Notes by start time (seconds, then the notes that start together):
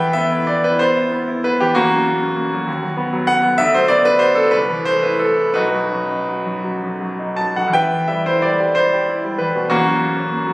Already playing: E2 B4 E5 G5
0.00 E3
0.13 B3 E5
0.32 E4
0.47 B3 D5
0.64 E4 B4
0.79 B3 C5
0.96 E4
1.12 B3
1.28 E4
1.44 B3 B4
1.60 E3 G4
1.75 E2 A#3 C#4 F#4
1.92 F#3
2.07 A#3
2.22 C#4
2.36 A#3
2.52 F#3
2.67 D#2
2.83 F#3
2.97 B3
3.13 F#3
3.27 B3 F#5
3.43 F#3
3.58 D2 E5
3.74 F#3 C5
3.88 B3 D5
4.05 D4 B4
4.19 F#4 C5
4.35 D4 A4
4.51 C2 B4
4.69 E3
4.85 A3 C5
5.03 E4 B4
5.19 A3 A4
5.38 E4
5.54 B1 D#4 F#4 B4
5.74 F#3
5.92 F#2
6.10 D#4
6.28 F#3
6.46 F#2
6.64 F#3
6.82 F#2
7.01 F#3
7.19 D#4
7.37 F#3 A5
7.56 F#2 F#5
7.68 E2
7.73 B4 E5 G5
7.91 E3
8.08 G3 E5
8.26 E4 C5
8.42 G3 D5
8.59 G4
8.75 E4 C5
8.93 G4
9.09 E4
9.24 G3
9.38 E3 B4
9.55 B2
9.70 E2 A#3 C#4 F#4
9.86 F#3
10.01 A#3
10.16 C#4
10.32 A#3
10.47 F#3